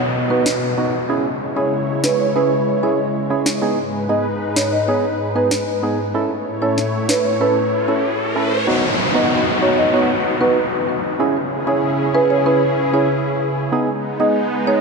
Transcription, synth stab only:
0.30 0.47 B3 medium
0.30 0.47 D#4 medium
0.30 0.47 F#4 medium
0.77 0.94 B3 medium
0.77 0.94 D#4 medium
0.77 0.95 F#4 medium
1.09 1.26 C#4 medium
1.09 1.26 E4 medium
1.09 1.26 G#4 loud
1.56 1.73 C#4 medium
1.56 1.73 E4 medium
1.56 1.74 G#4 medium
2.35 2.52 C#4 medium
2.35 2.52 E4 medium
2.35 2.53 G#4 loud
2.83 3.00 C#4 medium
2.83 3.00 E4 medium
2.83 3.00 G#4 medium
3.30 3.47 C#4 medium
3.30 3.47 E4 medium
3.30 3.47 G#4 medium
3.62 3.79 B3 medium
3.62 3.79 D#4 medium
3.62 3.79 G#4 loud
4.09 4.26 B3 medium
4.09 4.26 D#4 medium
4.09 4.26 G#4 medium
4.88 5.05 B3 medium
4.88 5.05 D#4 medium
4.88 5.05 G#4 loud
5.35 5.52 B3 medium
5.35 5.52 D#4 medium
5.35 5.53 G#4 medium
5.83 6.00 B3 medium
5.83 6.00 D#4 medium
5.83 6.00 G#4 medium
6.14 6.31 C#4 medium
6.14 6.31 E4 medium
6.14 6.31 A4 loud
6.62 6.79 C#4 medium
6.62 6.79 E4 medium
6.62 6.79 A4 medium
7.41 7.57 C#4 medium
7.41 7.58 E4 medium
7.41 7.58 A4 loud
7.88 8.05 C#4 medium
7.88 8.05 E4 medium
7.88 8.05 A4 medium
8.35 8.52 C#4 medium
8.35 8.52 E4 medium
8.35 8.53 A4 medium
8.67 8.84 B3 loud
8.67 8.84 D#4 medium
8.67 8.84 F#4 loud
9.14 9.58 B3 medium
9.14 9.58 D#4 medium
9.14 9.58 F#4 medium
9.62 9.91 B3 medium
9.62 9.91 D#4 medium
9.62 9.91 F#4 medium
9.93 10.10 B3 loud
9.93 10.10 D#4 medium
9.93 10.10 F#4 loud
10.41 10.57 B3 medium
10.41 10.58 D#4 medium
10.41 10.58 F#4 medium
11.19 11.36 C#4 medium
11.19 11.37 E4 medium
11.19 11.37 G#4 loud
11.67 12.11 C#4 medium
11.67 12.11 E4 medium
11.67 12.11 G#4 medium
12.14 12.43 C#4 medium
12.14 12.44 E4 medium
12.14 12.44 G#4 medium
12.46 12.63 C#4 loud
12.46 12.63 E4 medium
12.46 12.63 G#4 loud
12.93 13.10 C#4 medium
12.93 13.10 E4 medium
12.93 13.10 G#4 medium
13.72 13.89 B3 medium
13.72 13.89 D#4 medium
13.72 13.89 G#4 loud
14.20 14.63 B3 medium
14.20 14.63 D#4 medium
14.20 14.64 G#4 medium
14.67 14.81 B3 medium
14.67 14.81 D#4 medium
14.67 14.81 G#4 medium

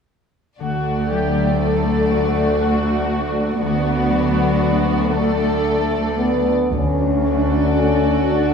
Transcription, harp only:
0.60 3.60 D3 soft
1.10 4.08 F#3 soft
1.61 2.60 A4 soft
2.11 5.09 F#4 soft
2.61 4.59 A4 soft
3.12 6.18 D4 soft
3.62 6.71 D3 soft
4.10 8.00 F#3 soft
4.60 5.63 A4 soft
5.10 7.49 F#4 soft
5.64 7.74 A4 soft
6.19 6.97 D4 soft
6.73 8.54 D3 soft
6.99 8.54 D4 soft
7.24 8.54 A3 soft
7.50 8.02 F#4 soft
7.76 8.53 A4 soft
8.03 8.54 F#4 soft
8.30 8.54 F#5 soft

